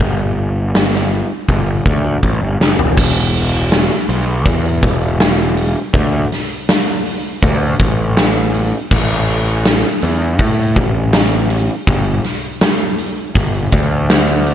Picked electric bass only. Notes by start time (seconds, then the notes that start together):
0.00 G1
1.49 G1
1.86 D2
2.23 A1
2.42 G1
2.60 F#1
2.79 E1
2.97 E1
4.09 B1
4.46 E2
4.83 E1
5.94 D2
7.43 D2
7.80 A1
8.91 A1
10.03 E2
10.39 A2
10.77 A1
11.87 G1
13.35 G1
13.73 D2